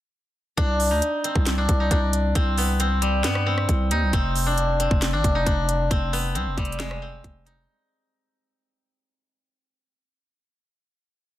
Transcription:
0.57 808-style bass C2, guzheng D4, kick, closed hi-hat
0.80 open hi-hat
0.91 808-style bass D2, guzheng D#4
1.02 closed hi-hat
1.24 guzheng C4, closed hi-hat
1.36 808-style bass C2, kick
1.46 snare, clap, closed hi-hat
1.58 guzheng D4
1.69 808-style bass C2, kick, closed hi-hat
1.80 guzheng D#4
1.91 808-style bass C2, guzheng D4, kick, closed hi-hat
2.13 closed hi-hat
2.35 808-style bass C2, guzheng C4, kick, closed hi-hat
2.58 guzheng B3, open hi-hat
2.80 guzheng C4, closed hi-hat
3.02 guzheng G3, closed hi-hat
3.24 808-style bass G2, guzheng B3, snare, clap, closed hi-hat
3.35 cross-stick
3.46 guzheng C4
3.58 cross-stick
3.69 808-style bass C2, kick, closed hi-hat
3.91 808-style bass D#2, guzheng D#4, closed hi-hat
4.02 808-style bass C2
4.13 808-style bass F1, guzheng C4, kick, closed hi-hat
4.36 open hi-hat
4.46 guzheng D4
4.58 closed hi-hat
4.80 guzheng C4, closed hi-hat
4.91 808-style bass F1, kick
5.02 snare, clap, closed hi-hat
5.13 808-style bass G#1, guzheng D4
5.24 808-style bass F1, kick, closed hi-hat
5.35 guzheng D#4
5.46 808-style bass F1, guzheng D4, kick, closed hi-hat
5.69 closed hi-hat
5.91 808-style bass F1, guzheng C4, kick, closed hi-hat
6.13 guzheng B3, open hi-hat
6.35 808-style bass C2, guzheng C4, closed hi-hat
6.47 808-style bass F1
6.58 808-style bass F1, guzheng G3, kick, closed hi-hat
6.65 closed hi-hat
6.72 closed hi-hat
6.80 guzheng G#3, snare, clap, closed hi-hat
6.91 cross-stick
7.02 guzheng C4
7.24 808-style bass F1, kick, closed hi-hat
7.46 guzheng D#4, closed hi-hat

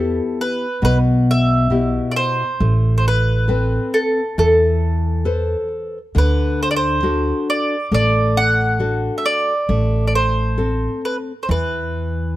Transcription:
Already playing: upright bass E2, nylon-string guitar B3 E4 G4, mandolin A4
0.41 mandolin B4
0.82 upright bass B1, nylon-string guitar B2, mandolin B4
1.31 mandolin E5
1.70 nylon-string guitar B2 E4 G4
2.11 mandolin D5
2.16 mandolin C5
2.60 upright bass A1, nylon-string guitar A3
2.98 mandolin C5
3.08 mandolin B4
3.48 nylon-string guitar C4 A4 B4
3.94 mandolin A4
4.38 upright bass E2, nylon-string guitar E3, mandolin A4
5.25 nylon-string guitar A4 B4 C5
6.15 upright bass D2, nylon-string guitar D3, mandolin B4
6.63 mandolin C5
6.71 mandolin D5
6.76 mandolin C5
7.03 nylon-string guitar D4 F#4 A4
7.50 mandolin D5
7.92 upright bass A1, nylon-string guitar A3, mandolin D5
8.37 mandolin F#5
8.79 nylon-string guitar D4 F#4 A4
9.18 mandolin E5
9.26 mandolin D5
9.69 upright bass A1, nylon-string guitar A3
10.07 mandolin D5
10.15 mandolin C5
10.58 nylon-string guitar C4 A4
11.05 mandolin B4
11.43 mandolin C5
11.49 upright bass E2, nylon-string guitar E3, mandolin B4

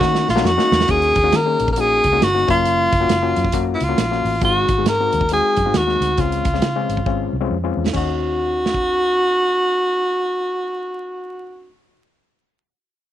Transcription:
Already playing: tenor saxophone F#4
0.00 fingered electric bass D#3, reed electric piano A#3 C#4 D#4 F#4, kick, snare
0.15 snare
0.28 fingered electric bass A#1, tenor saxophone F4, snare
0.36 reed electric piano A#3 C#4 D#4 F#4, snare
0.44 fingered electric bass F2, tenor saxophone F#4, snare
0.58 reed electric piano A#3 C#4 D#4 F#4, snare
0.72 fingered electric bass E2, snare
0.80 snare
0.88 fingered electric bass D#2, reed electric piano A#3 C#4 D#4 F#4, tenor saxophone G#4, kick, closed hi-hat
1.02 closed hi-hat
1.15 fingered electric bass D#2, kick, closed hi-hat
1.23 reed electric piano A#3 C#4 D#4 F#4
1.32 fingered electric bass D#3, tenor saxophone A#4, snare, closed hi-hat
1.46 reed electric piano A#3 C#4 D#4 G#4
1.59 fingered electric bass A#1, closed hi-hat
1.68 kick
1.72 tenor saxophone A#4, closed hi-hat
1.77 reed electric piano A#3 C#4 D#4 F#4, tenor saxophone G#4
2.04 fingered electric bass C#2, kick, closed hi-hat
2.13 reed electric piano A#3 C#4 D#4 F#4
2.21 fingered electric bass G1, tenor saxophone F#4, snare, closed hi-hat
2.35 reed electric piano A#3 C#4 D#4 F#4, snare
2.48 fingered electric bass F#1, reed electric piano F#3 A#3 C#4 F4, tenor saxophone F4, kick, closed hi-hat
2.65 closed hi-hat
2.92 fingered electric bass F#1, kick, closed hi-hat
3.01 reed electric piano A#3 C#4 F4 F#4
3.09 fingered electric bass F#1, snare, closed hi-hat
3.22 reed electric piano A#3 C#4 F4 F#4
3.36 fingered electric bass F#2, closed hi-hat
3.44 kick
3.52 reed electric piano A#3 C#4 F4 F#4, kick, closed hi-hat
3.75 tenor saxophone E4
3.80 fingered electric bass C#2, tenor saxophone F4, closed hi-hat
3.89 reed electric piano A#3 C#4 F4 F#4
3.98 fingered electric bass A#1, snare, closed hi-hat
4.11 reed electric piano A#3 C#4 F4 F#4, snare
4.25 fingered electric bass A1, open hi-hat
4.41 fingered electric bass G#1, reed electric piano G#3 C4 D#4 F#4, tenor saxophone F#4, kick, closed hi-hat
4.68 fingered electric bass G#1, kick, closed hi-hat
4.78 reed electric piano G#3 C4 D#4 G#4
4.85 fingered electric bass G#2, tenor saxophone A#4, snare, closed hi-hat
5.00 reed electric piano G#3 C4 D#4 F#4
5.12 fingered electric bass D#2, closed hi-hat
5.21 kick
5.29 reed electric piano G#3 C4 D#4 F#4, closed hi-hat
5.33 tenor saxophone G#4
5.56 fingered electric bass F#2, kick, closed hi-hat
5.66 fingered electric bass G#2, reed electric piano G#3 C4 D#4 F#4
5.74 fingered electric bass D#2, tenor saxophone F#4, snare, closed hi-hat
5.87 reed electric piano G#3 C4 D#4 F#4, snare
6.01 fingered electric bass D2, closed hi-hat
6.17 fingered electric bass C#2, reed electric piano G#3 C4 C#4 F4, tenor saxophone F4, kick, closed hi-hat
6.32 closed hi-hat
6.45 fingered electric bass C#2, kick, closed hi-hat
6.54 reed electric piano G#3 C4 C#4 F4, snare
6.62 fingered electric bass C#3, snare, closed hi-hat
6.76 reed electric piano G#3 C4 C#4 F4
6.89 fingered electric bass G#1, closed hi-hat
6.97 kick
7.06 reed electric piano G#3 C4 C#4 F4, kick
7.33 fingered electric bass C2
7.41 reed electric piano G#3 C4 C#4 F4
7.50 fingered electric bass F2
7.64 reed electric piano G#3 C4 C#4 F4
7.77 fingered electric bass E2
7.86 snare
7.93 fingered electric bass D#2, reed electric piano C#4 D#4 F#4, tenor saxophone F#4, kick, crash
8.66 snare
8.74 kick

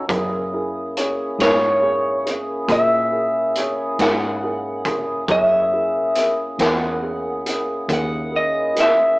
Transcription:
0.08 fingered electric bass F#2, tonewheel organ A#3 C#4 E4 G#4, upright piano E4 G#4 A#4, kick, closed hi-hat
0.53 upright piano E4 G#4 A#4
0.97 upright piano E4 G#4 C#5, closed hi-hat
1.39 fingered electric bass G#2, upright piano E4 G#4 A#4, clean electric guitar C#5, snare, closed hi-hat
1.82 upright piano E4 G#4 A#4
2.26 upright piano E4 G#4 A#4, closed hi-hat
2.68 fingered electric bass A#2, upright piano E4 G#4 A#4, clean electric guitar E5, kick, closed hi-hat
3.11 upright piano E4 G#4 A#4
3.55 upright piano E4 G#4 C#5, closed hi-hat
3.99 fingered electric bass G#2, upright piano E4 G#4 A#4, clean electric guitar F#5, snare, closed hi-hat
4.43 upright piano E4 G#4 A#4
4.85 upright piano E4 G#4 A#4, kick, closed hi-hat
5.27 fingered electric bass F#2, tonewheel organ A#3 C#4 E4 G#4, upright piano E4 G#4 C#5, kick, closed hi-hat
5.31 clean electric guitar E5
5.73 upright piano E4 G#4 A#4
6.15 upright piano E4 G#4 A#4, closed hi-hat
6.59 fingered electric bass E2, upright piano E4 G#4 A#4, clean electric guitar F#5, snare, closed hi-hat
7.03 upright piano E4 G#4 A#4
7.46 upright piano E4 G#4 A#4, closed hi-hat
7.88 fingered electric bass D#2, upright piano E4 G#4 A#4, kick, closed hi-hat
7.93 clean electric guitar F#5
8.32 upright piano E4 G#4 A#4
8.36 clean electric guitar D#5
8.75 upright piano E4 G#4 A#4, snare, closed hi-hat
8.80 clean electric guitar E5

